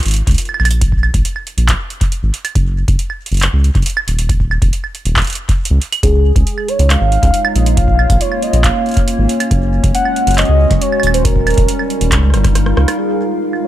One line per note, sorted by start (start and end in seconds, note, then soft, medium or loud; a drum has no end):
0.00 closed hi-hat soft
0.03 0.23 G#1 medium
0.03 closed hi-hat soft
0.06 closed hi-hat soft
0.08 closed hi-hat soft
0.11 closed hi-hat medium
0.14 closed hi-hat medium
0.16 closed hi-hat soft
0.27 0.36 C#2 medium
0.27 kick loud
0.27 closed hi-hat medium
0.31 closed hi-hat soft
0.34 closed hi-hat soft
0.38 closed hi-hat medium
0.42 closed hi-hat soft
0.45 closed hi-hat soft
0.45 claves soft
0.54 claves soft
0.60 1.10 A#1 medium
0.60 claves medium
0.65 closed hi-hat medium
0.65 claves medium
0.71 closed hi-hat medium
0.81 kick loud
0.81 closed hi-hat medium
0.92 kick medium
1.03 claves medium
1.14 1.23 A#1 medium
1.14 kick loud
1.14 closed hi-hat medium
1.25 closed hi-hat medium
1.36 claves soft
1.47 closed hi-hat soft
1.57 1.75 A#1 loud
1.57 closed hi-hat medium
1.68 kick medium
1.68 clap loud
1.68 closed hi-hat medium
1.90 closed hi-hat soft
2.01 kick loud
2.01 closed hi-hat medium
2.12 closed hi-hat medium
2.23 2.31 G#1 medium
2.34 closed hi-hat medium
2.45 closed hi-hat medium
2.45 claves soft
2.55 2.84 F#1 loud
2.55 kick loud
2.55 closed hi-hat medium
2.88 2.97 F#1 medium
2.88 kick loud
2.88 closed hi-hat medium
2.99 closed hi-hat medium
3.10 claves soft
3.26 closed hi-hat soft
3.31 3.49 F#1 loud
3.31 closed hi-hat soft
3.34 closed hi-hat soft
3.37 closed hi-hat soft
3.40 clap loud
3.40 closed hi-hat soft
3.42 closed hi-hat medium
3.53 3.70 C#2 medium
3.64 closed hi-hat soft
3.75 3.84 F#1 medium
3.75 kick loud
3.75 closed hi-hat soft
3.82 closed hi-hat soft
3.86 closed hi-hat medium
3.90 closed hi-hat soft
3.97 claves medium
4.08 4.58 D#1 medium
4.08 closed hi-hat medium
4.19 closed hi-hat medium
4.29 kick loud
4.29 closed hi-hat medium
4.40 kick medium
4.51 claves medium
4.62 4.70 D#1 medium
4.62 kick loud
4.62 closed hi-hat soft
4.73 closed hi-hat medium
4.84 claves soft
4.95 closed hi-hat soft
5.05 5.23 D#1 loud
5.05 closed hi-hat soft
5.16 kick medium
5.16 clap loud
5.16 closed hi-hat soft
5.19 closed hi-hat soft
5.22 closed hi-hat soft
5.24 closed hi-hat soft
5.27 closed hi-hat soft
5.30 closed hi-hat soft
5.33 closed hi-hat medium
5.35 closed hi-hat medium
5.49 kick loud
5.49 closed hi-hat soft
5.65 closed hi-hat medium
5.71 5.79 C#2 medium
5.82 closed hi-hat medium
5.92 closed hi-hat medium
5.92 claves soft
6.03 6.32 C#2 loud
6.03 7.77 G#3 medium
6.03 6.70 G#4 loud
6.03 kick loud
6.03 closed hi-hat medium
6.36 6.44 C#2 medium
6.36 kick loud
6.36 closed hi-hat soft
6.47 8.47 D#4 medium
6.47 closed hi-hat medium
6.58 claves soft
6.68 6.90 C#5 loud
6.68 closed hi-hat soft
6.79 6.96 C#2 loud
6.79 9.51 F4 medium
6.79 11.81 C#5 medium
6.79 9.51 F5 medium
6.79 closed hi-hat soft
6.90 7.57 F5 loud
6.90 clap loud
6.90 closed hi-hat medium
7.01 7.18 G#1 medium
7.12 closed hi-hat soft
7.23 7.31 C#2 medium
7.23 kick loud
7.23 closed hi-hat soft
7.34 closed hi-hat medium
7.45 claves medium
7.55 8.06 A#1 medium
7.55 7.77 D#5 loud
7.55 closed hi-hat medium
7.66 closed hi-hat medium
7.77 10.21 A#3 medium
7.77 8.22 F5 loud
7.77 kick loud
7.77 closed hi-hat medium
7.88 11.95 C#4 medium
7.88 kick medium
7.99 claves medium
8.10 8.18 A#1 medium
8.10 kick loud
8.10 closed hi-hat soft
8.21 8.44 C#5 loud
8.21 closed hi-hat medium
8.32 claves soft
8.42 8.64 D#5 loud
8.42 closed hi-hat soft
8.53 8.70 A#1 loud
8.53 closed hi-hat medium
8.64 9.25 F5 loud
8.64 kick medium
8.64 clap loud
8.64 closed hi-hat medium
8.86 closed hi-hat soft
8.89 closed hi-hat soft
8.91 closed hi-hat soft
8.94 kick loud
8.94 closed hi-hat soft
8.97 closed hi-hat medium
9.08 closed hi-hat medium
9.18 9.27 G#1 medium
9.29 closed hi-hat soft
9.40 closed hi-hat medium
9.40 claves soft
9.51 9.80 F#1 medium
9.51 11.25 G#3 medium
9.51 kick loud
9.51 closed hi-hat medium
9.84 9.92 F#1 medium
9.84 kick loud
9.84 closed hi-hat medium
9.95 10.35 F#5 loud
9.95 closed hi-hat medium
10.05 claves soft
10.16 closed hi-hat soft
10.27 10.44 F#1 loud
10.27 closed hi-hat soft
10.31 closed hi-hat soft
10.34 10.83 D#5 loud
10.34 clap loud
10.34 closed hi-hat soft
10.38 closed hi-hat medium
10.45 10.66 C#2 medium
10.45 closed hi-hat soft
10.71 10.79 F#1 medium
10.71 kick loud
10.71 closed hi-hat soft
10.81 11.13 C#5 loud
10.81 closed hi-hat medium
10.92 claves soft
11.00 11.54 D#1 medium
11.00 closed hi-hat medium
11.00 claves soft
11.07 claves medium
11.14 11.24 C5 medium
11.14 closed hi-hat medium
11.25 12.99 G3 medium
11.25 12.51 A#4 loud
11.25 kick loud
11.25 closed hi-hat medium
11.36 kick medium
11.47 closed hi-hat soft
11.47 claves medium
11.50 closed hi-hat soft
11.54 11.66 D#1 medium
11.54 kick loud
11.54 closed hi-hat soft
11.58 closed hi-hat medium
11.68 13.68 D#4 medium
11.68 closed hi-hat medium
11.79 claves soft
11.90 closed hi-hat soft
12.01 12.13 D#1 loud
12.01 13.68 F4 medium
12.01 13.68 A#4 medium
12.01 13.68 F5 medium
12.01 closed hi-hat medium
12.12 12.35 C#2 loud
12.12 kick medium
12.12 cross-stick medium
12.12 clap loud
12.12 closed hi-hat medium
12.23 cross-stick soft
12.30 12.73 G1 loud
12.30 cross-stick soft
12.34 cross-stick medium
12.34 closed hi-hat soft
12.37 cross-stick soft
12.44 kick loud
12.44 cross-stick medium
12.44 closed hi-hat medium
12.55 cross-stick medium
12.55 closed hi-hat medium
12.66 cross-stick medium
12.77 12.86 C#2 medium
12.77 cross-stick loud
12.88 cross-stick medium
12.88 closed hi-hat medium
12.88 claves medium
12.99 13.68 G#3 medium
12.99 13.39 G#4 loud
13.53 claves soft
13.64 13.68 C#5 loud